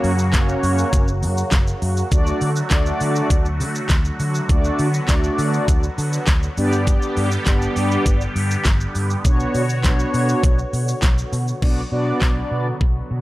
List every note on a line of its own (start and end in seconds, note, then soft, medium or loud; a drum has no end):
0.00 0.35 F#2 loud
0.00 2.08 C#3 medium
0.00 6.53 F#3 medium
0.00 0.12 A#3 medium
0.00 2.08 A#3 medium
0.00 0.12 C#4 medium
0.00 0.12 F#4 medium
0.00 6.53 F#4 medium
0.00 0.12 C#5 loud
0.00 open hi-hat medium
0.00 shaker soft
0.19 shaker medium
0.33 0.53 F#1 loud
0.33 1.09 A#3 medium
0.33 1.09 C#4 medium
0.33 1.09 F#4 medium
0.33 1.09 C#5 loud
0.33 kick loud
0.33 snare medium
0.33 clap loud
0.33 closed hi-hat medium
0.33 shaker medium
0.49 shaker medium
0.63 0.83 F#2 loud
0.63 open hi-hat medium
0.63 shaker medium
0.78 shaker medium
0.93 1.24 F#1 loud
0.93 kick loud
0.93 closed hi-hat medium
0.93 shaker medium
1.08 shaker medium
1.23 1.42 F#2 loud
1.23 open hi-hat medium
1.23 shaker medium
1.37 shaker medium
1.51 1.72 F#1 loud
1.51 kick loud
1.51 snare loud
1.51 clap loud
1.51 closed hi-hat medium
1.51 shaker medium
1.67 shaker medium
1.82 2.01 F#2 loud
1.82 open hi-hat medium
1.82 shaker soft
1.97 shaker medium
2.11 2.31 D2 loud
2.11 11.58 D3 medium
2.11 4.47 A3 medium
2.11 2.49 A3 medium
2.11 2.49 D4 medium
2.11 2.50 F#4 medium
2.11 2.50 D5 loud
2.11 kick loud
2.11 closed hi-hat medium
2.11 shaker medium
2.27 shaker medium
2.41 2.61 D3 loud
2.41 open hi-hat medium
2.41 shaker medium
2.56 shaker medium
2.70 2.90 D2 loud
2.70 3.46 A3 medium
2.70 3.46 D4 medium
2.70 3.46 F#4 medium
2.70 3.46 D5 loud
2.70 kick loud
2.70 snare medium
2.70 clap loud
2.70 closed hi-hat medium
2.70 shaker medium
2.86 shaker medium
3.01 3.20 D3 loud
3.01 open hi-hat medium
3.01 shaker medium
3.16 shaker medium
3.30 3.62 D2 loud
3.30 kick loud
3.30 closed hi-hat medium
3.30 shaker medium
3.45 shaker medium
3.60 3.80 D3 loud
3.60 open hi-hat medium
3.60 shaker medium
3.75 shaker medium
3.89 4.09 D2 loud
3.89 kick loud
3.89 snare loud
3.89 clap loud
3.89 closed hi-hat medium
3.89 shaker medium
4.05 shaker medium
4.20 4.39 D3 loud
4.20 open hi-hat medium
4.20 shaker medium
4.35 shaker medium
4.49 4.69 D2 loud
4.49 4.87 A3 medium
4.49 11.58 B3 medium
4.49 4.87 D4 medium
4.49 4.87 F#4 medium
4.49 4.87 D5 loud
4.49 kick loud
4.49 closed hi-hat medium
4.49 shaker medium
4.64 shaker medium
4.79 4.99 D3 loud
4.79 open hi-hat medium
4.79 shaker medium
4.94 shaker medium
5.08 5.28 D2 medium
5.08 5.84 A3 medium
5.08 5.84 D4 medium
5.08 5.84 F#4 medium
5.08 5.84 D5 loud
5.08 kick loud
5.08 snare medium
5.08 clap loud
5.08 closed hi-hat medium
5.08 shaker medium
5.24 shaker medium
5.39 5.58 D3 loud
5.39 open hi-hat medium
5.39 shaker medium
5.54 shaker medium
5.68 5.87 D2 loud
5.68 kick loud
5.68 closed hi-hat medium
5.68 shaker medium
5.83 shaker medium
5.98 6.17 D3 loud
5.98 open hi-hat medium
5.98 shaker medium
6.13 shaker medium
6.27 6.47 D2 loud
6.27 kick loud
6.27 snare loud
6.27 clap loud
6.27 closed hi-hat medium
6.27 shaker medium
6.43 shaker medium
6.57 6.96 G2 loud
6.57 9.22 G3 medium
6.57 7.29 B3 medium
6.57 7.29 D4 medium
6.57 9.22 G4 medium
6.57 7.29 G4 medium
6.57 7.29 D5 loud
6.57 open hi-hat medium
6.57 shaker medium
6.72 shaker medium
6.87 kick loud
6.87 closed hi-hat medium
6.87 shaker medium
7.02 shaker medium
7.17 7.36 G2 loud
7.17 open hi-hat medium
7.17 shaker medium
7.32 shaker medium
7.46 7.66 G1 loud
7.46 8.22 B3 medium
7.46 8.22 D4 medium
7.46 8.22 G4 medium
7.46 8.22 D5 loud
7.46 kick loud
7.46 snare medium
7.46 clap loud
7.46 closed hi-hat medium
7.46 shaker medium
7.62 shaker medium
7.76 7.96 G2 loud
7.76 open hi-hat medium
7.76 shaker medium
7.91 shaker medium
8.06 8.25 G1 loud
8.06 kick loud
8.06 closed hi-hat medium
8.06 shaker medium
8.21 shaker medium
8.36 8.55 G2 loud
8.36 open hi-hat medium
8.36 shaker medium
8.51 shaker medium
8.65 8.85 G1 loud
8.65 kick loud
8.65 snare loud
8.65 clap loud
8.65 closed hi-hat medium
8.65 shaker medium
8.81 shaker medium
8.95 9.14 G2 loud
8.95 open hi-hat medium
8.95 shaker medium
9.10 shaker medium
9.25 9.44 B1 loud
9.25 9.62 B3 medium
9.25 9.62 D4 medium
9.25 11.60 F#4 medium
9.25 9.62 F#4 medium
9.25 11.60 C#5 medium
9.25 9.62 C#5 loud
9.25 kick loud
9.25 closed hi-hat medium
9.25 shaker medium
9.40 shaker medium
9.54 9.86 B2 loud
9.54 open hi-hat medium
9.54 shaker medium
9.69 shaker medium
9.84 10.04 B1 loud
9.84 10.59 B3 medium
9.84 10.59 D4 medium
9.84 10.59 F#4 medium
9.84 10.60 C#5 loud
9.84 kick loud
9.84 snare medium
9.84 clap loud
9.84 closed hi-hat medium
9.84 shaker medium
9.99 shaker medium
10.14 10.33 B2 medium
10.14 open hi-hat medium
10.14 shaker medium
10.29 shaker medium
10.43 10.63 B1 loud
10.43 kick loud
10.43 closed hi-hat medium
10.43 shaker medium
10.59 shaker medium
10.73 10.92 B2 loud
10.73 open hi-hat medium
10.73 shaker medium
10.88 shaker medium
11.02 11.22 B1 loud
11.02 kick loud
11.02 snare loud
11.02 clap loud
11.02 closed hi-hat medium
11.02 shaker medium
11.18 shaker medium
11.32 11.52 B2 loud
11.32 open hi-hat medium
11.32 shaker medium
11.48 shaker medium
11.62 11.82 B1 loud
11.62 13.21 D3 medium
11.62 13.21 F#3 medium
11.62 13.21 B3 medium
11.62 11.81 B3 medium
11.62 11.81 D4 medium
11.62 13.21 F#4 medium
11.62 11.81 F#4 medium
11.62 11.81 D5 medium
11.62 kick loud
11.62 crash medium
11.92 12.11 B2 loud
11.92 12.67 B3 medium
11.92 12.67 D4 medium
11.92 12.67 F#4 medium
11.92 12.67 D5 loud
12.21 12.41 B1 loud
12.21 kick loud
12.21 snare medium
12.21 clap loud
12.51 12.71 B2 medium
12.81 13.00 B1 medium
12.81 kick loud
13.11 13.21 B2 loud